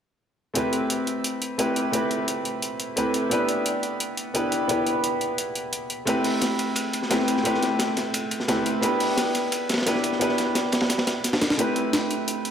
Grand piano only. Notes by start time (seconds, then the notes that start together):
0.54 A3 C4 E4 G4 B4
1.58 A3 C4 E4 G4 B4
1.92 A3 C4 E4 G4 B4
2.96 A3 C4 E4 G4 B4
3.30 B3 D4 E4 G4 B4
4.34 B3 D4 E4 G4 B4
4.68 B3 D4 E4 G4 B4
6.05 A3 C4 E4 G4 B4
7.10 A3 C4 E4 G4 B4
7.43 A3 C4 E4 G4 B4
8.48 A3 C4 E4 G4 B4
8.81 B3 D4 E4 G4 B4
9.86 B3 D4 E4 G4 B4
10.19 B3 D4 E4 G4 B4
11.57 A3 C4 E4 G4 B4